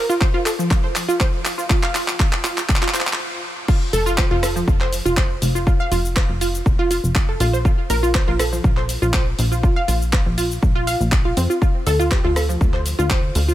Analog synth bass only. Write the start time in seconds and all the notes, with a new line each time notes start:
3.93 F1
4.31 F1
4.68 F1
5.05 F1
5.42 F1
5.91 F1
6.29 F1
6.66 F1
7.04 F1
7.40 A#1
7.90 A#1
8.28 A#1
8.64 A#1
9.02 A#1
9.39 A#1
9.88 A#1
10.26 A#1
10.63 A#1
11.00 A#1
11.37 F2
11.87 D2
12.24 D2
12.61 D2
12.99 D2
13.35 D2